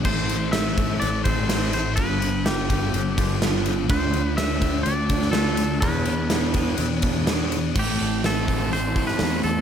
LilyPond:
<<
  \new Staff \with { instrumentName = "Clean electric guitar" } { \time 4/4 \key a \minor \tempo 4 = 125 c''4 e''4 d''8 c''4 c''8 | b'4 g'2 r4 | c''4 e''4 d''4 a'4 | b'2.~ b'8 r8 |
g'4 a'4 c''8. b'8. a'8 | }
  \new Staff \with { instrumentName = "Overdriven electric guitar" } { \time 4/4 \key a \minor <a, e a c' e'>4 <e a c' e'>8 <a c' e'>4 <a c' e'>8 <a, e a c' e'>4 | <g, d f b f'>4 <d f b f'>8 <f b f'>4 <f b f'>8 <g, d f b f'>4 | <d a d' f'>4 <d a d' f'>8 <a d' f'>4 <a d' f'>8 <d a d' f'>4 | <e b d' gis'>4 <e b d' gis'>8 <b d' gis'>4 <b d' gis'>8 <e b d' gis'>4 |
<a, e a c' e'>1 | }
  \new Staff \with { instrumentName = "Distorted electric guitar" } { \clef bass \time 4/4 \key a \minor <a, e a>8 <e a>8 <a, e a>8 <e a>4. <a, e a>8 <e a>8 | <g, d g>8 <d g>8 <g, d g>8 <d g>4. <g, d g>8 <d g>8 | <d a d'>8 <a d'>8 <d a d'>8 <a d'>4. <d a d'>8 <a d'>8 | <e, b, e>8 <b, e>8 <e, b, e>8 <b, e>4. <e, b, e>8 <b, e>8 |
<a, e a>4 <a, e a>4 <a, e a>8 <e a>8 <a, e a>4 | }
  \new Staff \with { instrumentName = "Fingered electric bass" } { \clef bass \time 4/4 \key a \minor a,,2 a,,2 | g,,2 g,,2 | d,2 d,2 | e,2 e,2 |
a,,8 a,,2 r8 e,8 e,8 | }
  \new DrumStaff \with { instrumentName = "Drums" } \drummode { \time 4/4 <cymc bd>8 cymr8 <cymr sn>8 <bd cymr>8 cymr8 <bd cymr>8 <cymr sn>8 cymr8 | <bd cymr>8 cymr8 <cymr sn>8 <bd cymr>8 cymr8 <bd cymr>8 <cymr sn>8 cymr8 | <bd cymr>8 cymr8 <cymr sn>8 <bd cymr>8 cymr8 <bd cymr>16 sn16 <cymr sn>8 cymr8 | <bd cymr>8 cymr8 <cymr sn>8 <bd cymr>8 cymr8 <bd cymr>8 <cymr sn>8 cymr8 |
<cymc bd>8 hho8 <hho sn>8 <hho bd>8 hho8 <hho bd>16 sn16 <hho sn>8 hho8 | }
>>